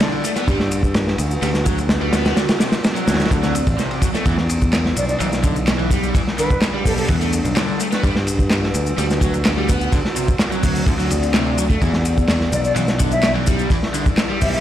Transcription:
Already playing: G3 E4 D5
0.00 D3, snare, ride, shaker
0.12 ride
0.24 A3, ride, shaker
0.36 B3, snare, shaker
0.48 G2 G3 F#4 B4, kick, ride, shaker
0.60 snare
0.72 ride, shaker
0.83 kick, shaker
0.94 snare, ride, shaker
1.08 snare
1.18 D2, ride, shaker
1.31 shaker
1.42 D2 G3, ride, shaker
1.54 snare, shaker
1.66 F#3, kick, ride, shaker
1.78 ride, shaker
1.89 snare, ride, shaker
2.01 G3, ride
2.13 B3, snare, ride, shaker
2.25 snare, ride, shaker
2.36 D3 C4 D5, snare, ride, shaker
2.49 snare, ride, shaker
2.60 C3, snare, ride, shaker
2.72 snare, ride, shaker
2.84 snare, ride, shaker
2.96 F#3, shaker
3.08 D2, snare, ride, shaker
3.14 snare, ride
3.20 snare, ride, shaker
3.25 snare, ride
3.31 D2 D3, kick, ride, shaker
3.43 F#3, snare, shaker
3.55 ride, shaker
3.67 A1, kick, ride, shaker
3.78 C3, snare, shaker
3.91 ride
4.02 F#3, kick, ride, shaker
4.14 A3, snare, shaker
4.25 E2 E3 G3 E4 D5, kick, ride, shaker
4.37 snare
4.49 ride, shaker
4.62 kick, shaker
4.73 snare, clap, ride, shaker
4.85 snare
4.96 B1 D5, ride, shaker
5.09 D5, shaker
5.20 B1 E3, ride, shaker
5.32 snare, shaker
5.44 D3, kick, ride, shaker
5.56 ride, shaker
5.67 snare, clap, ride, shaker
5.79 E3, ride
5.91 G3, kick, ride, shaker
6.03 shaker
6.15 E3 D4, kick, ride, shaker
6.27 snare
6.38 D3 B4, ride, shaker
6.50 kick, shaker
6.62 snare, clap, ride, shaker
6.74 G3
6.85 B1 A4, kick, open hi-hat, shaker
6.98 A4, shaker
7.08 E2 E3, kick, ride, shaker
7.21 A3, ride, shaker
7.33 ride, shaker
7.45 B1, ride, shaker
7.56 D3, snare, clap, ride, shaker
7.68 ride
7.80 A3, ride, shaker
7.92 B3, snare, shaker
8.03 G2 G3 F#4 B4, kick, ride, shaker
8.16 snare
8.27 ride, shaker
8.39 kick, shaker
8.50 snare, clap, ride, shaker
8.64 snare
8.74 D2, ride, shaker
8.86 shaker
8.98 D2 G3, ride, shaker
9.10 snare, shaker
9.21 F#3, kick, ride, shaker
9.34 ride, shaker
9.45 snare, clap, ride, shaker
9.57 G3, ride
9.69 B3, kick, ride, shaker
9.81 shaker
9.92 D3 C4 D5, kick, ride, shaker
10.05 snare
10.16 C3, ride, shaker
10.28 kick, shaker
10.39 snare, clap, ride, shaker
10.52 F#3, shaker
10.63 D2, kick, open hi-hat, shaker
10.76 shaker
10.87 D2 D3, kick, ride, shaker
10.99 F#3, ride, shaker
11.10 D2, ride, shaker
11.23 ride, shaker
11.34 C3, snare, clap, ride, shaker
11.46 ride
11.58 F#3, ride, shaker
11.70 A3, kick, shaker
11.81 E2 E3 G3 E4, kick, ride, shaker
11.93 snare
12.05 ride, shaker
12.18 kick, shaker
12.28 snare, clap, ride, shaker
12.41 snare
12.52 B1 D5, ride, shaker
12.65 D5, shaker
12.76 B1 E3, ride, shaker
12.88 snare, shaker
12.99 D3, kick, ride, shaker
13.11 E5, ride, shaker
13.23 snare, clap, ride, shaker
13.35 E3, ride
13.47 G3, kick, ride, shaker
13.59 shaker
13.70 E3, kick, ride, shaker
13.83 snare
13.94 D3, ride, shaker
14.06 kick, shaker
14.18 snare, clap, ride, shaker
14.30 G3
14.41 B1 E5, kick, open hi-hat, shaker
14.54 E5, shaker

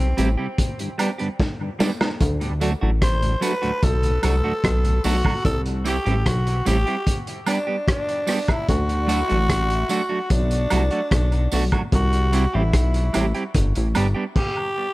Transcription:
Already playing: B1 C4
0.17 A1 G3 C4 E4 G4, closed hi-hat, tambourine
0.38 C3 G3 C4 E4 G4
0.58 kick, closed hi-hat
0.79 G2 D3, closed hi-hat
0.98 G3 B3 D4 G4, closed hi-hat, tambourine, high woodblock
1.18 G2 D3 G3 B3 D4 G4, closed hi-hat
1.40 kick, snare
1.61 G2 D3
1.79 G3 B3 D4 G4, snare, tambourine
2.00 B3 D4, snare, high woodblock
2.20 D2, kick, closed hi-hat
2.40 D2 A2, closed hi-hat
2.61 F#3 A3 D4 F#4, closed hi-hat, tambourine
2.81 A1 F#3 A3 D4 F#4
3.02 C5, kick, cross-stick, closed hi-hat
3.22 D2 A2, closed hi-hat
3.41 F#3 A3 D4 F#4 B4, closed hi-hat, tambourine
3.62 D2 A2 F#3 A3 D4 F#4, closed hi-hat
3.83 B1 A4, kick, closed hi-hat
4.03 D2 A2, closed hi-hat
4.22 C2 F#3 A3 D4 F#4 A4, closed hi-hat, tambourine, high woodblock
4.42 D2 A2 F#3 A3 D4 F#4
4.64 B1, kick, cross-stick, closed hi-hat
4.84 D2 A2, closed hi-hat
5.04 B1 F#3 A3 D4 F#4, open hi-hat, tambourine
5.24 D2 A2 F#3 A3 D4 F#4, kick, high woodblock
5.45 C2 A4, kick, closed hi-hat
5.66 closed hi-hat
5.84 G3 C4 E4 G4, closed hi-hat, tambourine
6.05 A1 G3 C4 E4 G4, closed hi-hat
6.26 B1 F#4, kick, cross-stick, closed hi-hat
6.47 closed hi-hat
6.66 A1 G3 C4 E4 G4, closed hi-hat, tambourine
6.86 G3 C4 E4 G4, closed hi-hat
7.07 kick, closed hi-hat
7.27 closed hi-hat
7.46 G3 B3 D4 G4, closed hi-hat, tambourine, high woodblock
7.67 G3 B3 D4 G4
7.88 D4, kick, cross-stick, closed hi-hat
8.09 closed hi-hat
8.27 G3 B3 D4 G4, cross-stick, open hi-hat, tambourine
8.48 E4, kick, cross-stick, closed hi-hat, high woodblock
8.69 D2 F#4, kick, closed hi-hat
8.89 closed hi-hat
9.07 F#3 A3 D4 F#4, closed hi-hat, tambourine
9.28 A1 F#3 A3 D4 F#4, closed hi-hat
9.49 kick, cross-stick, closed hi-hat
9.70 closed hi-hat
9.89 F#3 A3 D4 F#4, closed hi-hat, tambourine
10.09 F#3 A3 D4 F#4
10.30 B1 D4, kick, closed hi-hat
10.51 closed hi-hat
10.70 C2 F#3 A3 D4 F#4, closed hi-hat, tambourine, high woodblock
10.91 F#3 A3 D4 F#4, closed hi-hat
11.11 B1, kick, cross-stick, closed hi-hat
11.32 closed hi-hat
11.52 B1 F#3 A3 D4 F#4, open hi-hat, tambourine
11.72 F#3 A3 D4 F#4, kick, closed hi-hat, high woodblock
11.92 C2 F#4, kick, closed hi-hat
12.13 closed hi-hat
12.32 G3 C4 E4 G4, closed hi-hat, tambourine
12.53 A1 G3 C4 E4 G4
12.73 B1, kick, cross-stick, closed hi-hat
12.94 closed hi-hat
13.13 A1 G3 C4 E4 G4, closed hi-hat, tambourine, high woodblock
13.34 G3 C4 E4 G4, closed hi-hat
13.54 G1, kick, closed hi-hat
13.75 A1, closed hi-hat
13.95 G1 G3 B3 D4 G4, closed hi-hat, tambourine, high woodblock
14.15 G3 B3 D4 G4
14.36 G4, kick, crash

